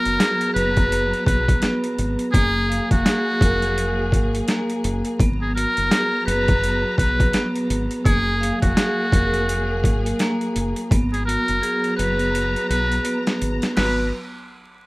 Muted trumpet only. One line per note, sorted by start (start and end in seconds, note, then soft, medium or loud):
0.00 0.51 A#4 loud
0.54 1.22 B4 medium
1.27 1.81 B4 medium
2.32 2.87 G#4 loud
2.92 4.44 F#4 loud
5.42 5.54 G#4 medium
5.55 6.23 A#4 loud
6.26 6.94 B4 medium
6.98 7.52 B4 medium
8.05 8.59 G#4 loud
8.62 10.15 F#4 medium
11.13 11.25 G#4 medium
11.26 11.94 A#4 loud
11.97 12.65 B4 medium
12.70 13.23 B4 medium
13.76 14.10 B4 medium